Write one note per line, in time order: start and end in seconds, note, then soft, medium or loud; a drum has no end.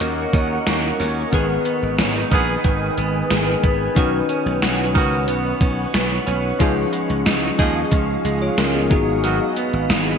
0.00 0.24 D#2 loud
0.00 0.65 A#3 medium
0.00 0.33 C#4 medium
0.00 0.95 C#4 medium
0.00 0.96 D#4 medium
0.00 0.96 F#4 medium
0.00 1.39 F#4 medium
0.00 0.96 A#4 medium
0.00 1.29 A#4 medium
0.00 6.56 D#5 medium
0.00 1.29 F#5 medium
0.00 1.29 C#6 medium
0.00 closed hi-hat medium
0.33 0.57 D#2 loud
0.33 0.99 C#4 medium
0.33 kick medium
0.33 closed hi-hat medium
0.67 0.91 D#2 medium
0.67 1.39 A#3 medium
0.67 snare loud
0.67 closed hi-hat medium
0.67 tambourine medium
1.00 1.24 D#2 loud
1.00 1.39 C#4 medium
1.00 open hi-hat medium
1.32 1.56 G#1 loud
1.32 1.47 D#3 medium
1.32 2.64 D#3 medium
1.32 3.26 B3 medium
1.32 1.47 B3 medium
1.32 3.26 D#4 medium
1.32 1.47 G#4 medium
1.32 3.27 G#4 medium
1.32 3.94 B4 medium
1.32 3.27 B4 medium
1.32 3.94 G#5 medium
1.32 3.94 D#6 medium
1.32 kick loud
1.32 closed hi-hat loud
1.65 2.31 B3 medium
1.65 closed hi-hat medium
1.83 1.94 G#1 medium
1.99 2.23 G#1 loud
1.99 2.15 C#4 medium
1.99 snare loud
1.99 closed hi-hat medium
1.99 tambourine medium
2.15 4.03 D#4 medium
2.31 2.55 A#1 medium
2.31 2.53 D#3 medium
2.31 2.53 B3 loud
2.31 2.97 B3 medium
2.31 2.53 G#4 loud
2.31 kick medium
2.31 closed hi-hat medium
2.64 2.88 G#1 loud
2.64 3.30 D#3 medium
2.64 kick medium
2.64 closed hi-hat loud
2.98 3.21 G#1 loud
2.98 3.63 B3 medium
2.98 closed hi-hat medium
3.30 3.54 G#1 medium
3.30 3.96 D#3 medium
3.30 3.96 B3 medium
3.30 3.95 D#4 soft
3.30 3.97 G#4 medium
3.30 3.96 B4 medium
3.30 snare loud
3.30 closed hi-hat medium
3.30 tambourine medium
3.63 3.87 G#1 medium
3.63 4.32 B3 medium
3.63 kick medium
3.63 closed hi-hat medium
3.95 4.20 B1 loud
3.95 6.59 D#3 medium
3.95 4.10 D#3 medium
3.95 6.55 C#4 medium
3.95 4.10 C#4 medium
3.95 6.56 D#4 medium
3.95 4.10 F#4 medium
3.95 6.56 F#4 medium
3.95 6.58 B4 medium
3.95 6.57 B4 medium
3.95 6.58 F#5 medium
3.95 8.87 C#6 medium
3.95 kick loud
3.95 closed hi-hat loud
4.29 4.95 C#4 medium
4.29 closed hi-hat medium
4.46 4.58 B1 loud
4.62 4.95 B1 loud
4.62 6.67 F#4 medium
4.62 snare loud
4.62 closed hi-hat medium
4.62 tambourine medium
4.95 5.29 C#2 medium
4.95 5.16 D#3 loud
4.95 5.60 C#4 medium
4.95 5.16 C#4 loud
4.95 5.16 F#4 loud
4.95 kick medium
4.95 closed hi-hat medium
5.28 5.52 B1 loud
5.28 5.93 B3 medium
5.28 closed hi-hat loud
5.61 5.85 B1 loud
5.61 6.26 C#4 medium
5.61 kick medium
5.61 closed hi-hat medium
5.94 6.18 B1 medium
5.94 6.66 B3 medium
5.94 snare loud
5.94 closed hi-hat medium
5.94 tambourine medium
6.27 6.51 B1 medium
6.27 7.25 C#4 medium
6.27 closed hi-hat medium
6.59 6.84 C#2 loud
6.59 7.91 F3 medium
6.59 6.74 F3 medium
6.59 8.21 C#4 medium
6.59 8.21 D#4 medium
6.59 6.74 D#4 medium
6.59 8.22 F4 medium
6.59 8.88 G#4 medium
6.59 6.74 G#4 medium
6.59 8.22 G#4 medium
6.59 10.18 D#5 medium
6.59 8.89 F5 medium
6.59 kick medium
6.59 closed hi-hat loud
6.93 7.58 G#3 medium
6.93 closed hi-hat medium
7.10 7.22 C#2 loud
7.26 7.50 C#2 loud
7.26 9.90 D#4 medium
7.26 snare loud
7.26 closed hi-hat medium
7.26 tambourine medium
7.59 7.83 D#2 medium
7.59 7.80 F3 medium
7.59 8.24 G#3 medium
7.59 7.80 D#4 loud
7.59 7.80 G#4 loud
7.59 kick loud
7.59 closed hi-hat medium
7.92 8.16 C#2 loud
7.92 8.56 F3 medium
7.92 kick medium
7.92 closed hi-hat medium
8.25 8.49 C#2 loud
8.25 9.27 G#3 medium
8.25 closed hi-hat medium
8.42 8.58 F4 medium
8.42 8.57 C#5 medium
8.58 8.93 C#2 loud
8.58 8.90 F3 medium
8.58 8.74 C#4 medium
8.58 8.74 A#4 medium
8.58 snare loud
8.58 closed hi-hat medium
8.58 tambourine medium
8.74 8.89 B3 medium
8.74 8.91 G#4 medium
8.90 9.38 G#1 loud
8.90 9.23 F#3 medium
8.90 10.18 B3 medium
8.90 10.18 D#4 medium
8.90 10.18 F#4 medium
8.90 10.18 G#4 medium
8.90 10.18 F#5 medium
8.90 10.18 B5 medium
8.90 kick loud
8.90 closed hi-hat medium
9.24 9.38 D#3 medium
9.24 10.18 F#3 medium
9.24 9.38 B3 medium
9.24 9.38 F#4 medium
9.24 closed hi-hat loud
9.56 10.18 B3 medium
9.56 closed hi-hat medium
9.73 9.85 G#1 loud
9.90 10.14 G#1 loud
9.90 10.18 D#4 medium
9.90 snare loud
9.90 closed hi-hat medium
9.90 tambourine medium